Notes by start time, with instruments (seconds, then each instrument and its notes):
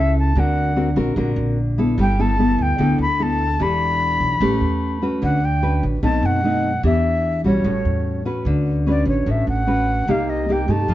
Already playing: upright bass C#2, nylon-string guitar C#3 C#4 E4 A4, flute E5
0.19 flute A5
0.35 upright bass D2, nylon-string guitar D3 C4 F#4 A#4, flute F#5
0.76 nylon-string guitar C4 F#4 A#4
0.96 upright bass A#1, nylon-string guitar C4 F#4 A#4
1.16 upright bass A#1, nylon-string guitar D3 C4 F#4 A#4
1.36 upright bass A#1
1.78 nylon-string guitar B3 E4 A4
1.98 upright bass G1, nylon-string guitar G3, flute G5
2.19 nylon-string guitar B3 E4 A4, flute A5
2.39 nylon-string guitar B3 E4 A4
2.58 upright bass D2, flute G5
2.78 upright bass D2, nylon-string guitar D3 B3 E4 A4
2.98 upright bass D2, flute B5
3.20 nylon-string guitar B3 E4 A4, flute A5
3.59 upright bass E1, nylon-string guitar E3 D4 G4 A4, flute B5
4.20 upright bass B1
4.41 upright bass A1, nylon-string guitar A3 C#4 G4 B4
4.61 upright bass E2
5.02 nylon-string guitar C#4 F#4 B4
5.22 upright bass D2, nylon-string guitar D3, flute F#5
5.45 flute G5
5.62 nylon-string guitar C#4 F#4 B4
5.83 upright bass A1
6.03 upright bass B1, nylon-string guitar B2 A3 C4 D#4, flute A5
6.23 upright bass F#2, flute F#5
6.44 nylon-string guitar A3 C4 D#4
6.83 upright bass E2, nylon-string guitar E3 B3 D4 G4, flute E5
7.44 upright bass B1, nylon-string guitar G3 C#4 F#4, flute C#5
7.64 upright bass A1, nylon-string guitar A2
7.85 upright bass E2
8.25 nylon-string guitar C#4 F#4 B4
8.45 upright bass D2, nylon-string guitar D3
8.87 nylon-string guitar C#4 F#4 B4, flute D5
9.05 upright bass A1, flute C#5
9.26 upright bass A1, nylon-string guitar A2
9.31 flute E5
9.47 upright bass A1, flute F#5
9.67 nylon-string guitar C#4 F#4 B4
10.07 upright bass C2, nylon-string guitar C3 A#3 D#4 G4, flute F5
10.30 flute D#5
10.49 nylon-string guitar A#3 D#4 G4, flute G5
10.68 upright bass G2, nylon-string guitar A3 D#4 G4, flute A5
10.88 upright bass F2, nylon-string guitar F3